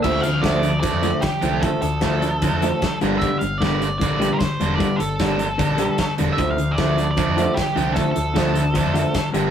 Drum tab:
CC |x-------|--------|--------|--------|
HH |-xxxxxxx|xxxxxxxx|xxxxxxxx|xxxxxxxx|
SD |--o---o-|--o---o-|--o---o-|--o---o-|
BD |o-o-o-o-|o-o-o-o-|o-o-o-o-|o-o-o-o-|

CC |--------|--------|
HH |xxxxxxxx|xxxxxxxx|
SD |--o---o-|--o---o-|
BD |o-o-o-o-|o-o-o-o-|